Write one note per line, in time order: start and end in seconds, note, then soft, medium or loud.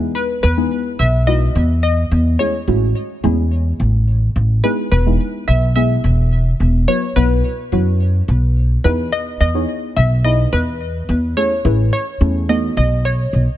0.00 0.11 E2 medium
0.00 0.43 G#3 loud
0.00 0.43 B3 medium
0.00 0.43 D#4 medium
0.00 0.43 E4 medium
0.00 0.43 G#4 loud
0.15 0.42 B4 loud
0.43 0.67 E2 loud
0.43 1.01 B4 loud
0.57 0.98 G#3 medium
0.57 0.98 B3 medium
0.57 0.98 D#4 medium
0.57 0.98 E4 medium
0.57 0.98 G#4 medium
0.99 1.47 B1 medium
0.99 1.25 E5 loud
1.27 1.93 G#3 medium
1.27 1.93 B3 medium
1.27 1.93 D#4 medium
1.27 1.93 E4 medium
1.27 1.93 F#4 medium
1.27 1.82 D#5 loud
1.55 2.03 E2 medium
1.83 2.41 D#5 loud
2.11 2.35 E2 loud
2.39 2.56 G#3 medium
2.39 2.56 A3 medium
2.39 2.56 C#4 medium
2.39 2.56 E4 medium
2.39 2.56 G#4 medium
2.39 3.47 C#5 loud
2.67 2.91 A1 medium
2.67 3.00 G#3 medium
2.67 3.00 A3 medium
2.67 3.00 C#4 medium
2.67 3.00 E4 medium
2.67 3.00 F#4 medium
3.23 3.71 E2 medium
3.23 3.89 G#3 medium
3.23 3.89 A3 medium
3.23 3.89 C#4 medium
3.23 3.89 E4 medium
3.23 3.89 G#4 loud
3.80 4.27 A1 medium
4.36 4.59 A1 medium
4.63 4.88 G#3 medium
4.63 4.88 B3 medium
4.63 4.88 D#4 medium
4.63 4.88 E4 medium
4.63 4.88 G#4 medium
4.63 4.76 B4 loud
4.92 5.15 E1 loud
4.92 5.44 B4 loud
5.06 5.47 G#3 medium
5.06 5.47 B3 medium
5.06 5.47 D#4 medium
5.06 5.47 E4 medium
5.06 5.47 G#4 medium
5.48 5.95 B1 medium
5.48 5.74 E5 loud
5.76 6.41 G#3 medium
5.76 6.41 B3 medium
5.76 6.41 E4 medium
5.76 6.41 G#4 medium
5.76 6.56 E5 loud
6.04 6.51 E1 medium
6.60 6.84 E1 medium
6.88 7.04 F#3 medium
6.88 7.04 B3 medium
6.88 7.04 E4 medium
6.88 7.05 F#4 medium
6.88 7.05 B4 medium
6.88 7.01 C#5 loud
7.16 7.40 B1 medium
7.16 7.49 F#3 medium
7.16 7.49 B3 medium
7.16 7.49 E4 medium
7.16 7.49 F#4 medium
7.16 7.68 B4 loud
7.16 7.49 B4 medium
7.72 8.19 F#2 medium
7.72 8.37 F#3 medium
7.72 8.37 B3 medium
7.72 8.38 E4 medium
7.72 8.38 F#4 medium
7.72 8.38 C#5 medium
8.28 8.76 B1 medium
8.84 9.08 E2 medium
8.84 9.40 B3 medium
8.84 9.40 D#4 medium
8.84 9.41 E4 medium
8.84 9.41 G#4 medium
8.84 9.13 B4 medium
8.84 9.41 B4 medium
9.12 9.38 D#5 loud
9.40 9.64 E2 medium
9.40 9.98 D#5 loud
9.54 9.95 B3 medium
9.54 9.95 D#4 medium
9.54 9.95 E4 medium
9.54 9.95 G#4 medium
9.54 9.95 C#5 medium
9.96 10.44 B1 loud
9.96 10.23 E5 loud
10.24 10.90 B3 medium
10.24 10.90 D#4 medium
10.24 10.90 E4 medium
10.24 10.90 G#4 medium
10.24 10.90 B4 medium
10.24 10.37 D#5 loud
10.53 11.00 E2 medium
10.53 11.39 B4 loud
11.09 11.32 E2 loud
11.37 11.53 A3 medium
11.37 11.53 C#4 medium
11.37 11.53 E4 medium
11.37 11.53 G#4 medium
11.37 11.53 A4 medium
11.37 11.92 C#5 loud
11.65 11.88 A1 loud
11.65 11.97 A3 medium
11.65 11.97 C#4 medium
11.65 11.97 E4 medium
11.65 11.98 G#4 medium
11.65 11.98 B4 medium
11.93 12.45 C#5 loud
12.21 12.68 E2 medium
12.21 12.47 A3 medium
12.21 12.49 C#4 medium
12.21 12.49 E4 medium
12.21 12.49 G#4 medium
12.21 12.48 A4 medium
12.49 13.38 A3 medium
12.49 13.39 B3 medium
12.49 13.39 D#4 medium
12.49 13.39 F#4 medium
12.49 13.39 A4 medium
12.49 12.76 D#5 loud
12.77 13.24 B1 medium
12.77 13.06 D#5 loud
13.05 13.57 C#5 medium
13.33 13.45 B1 medium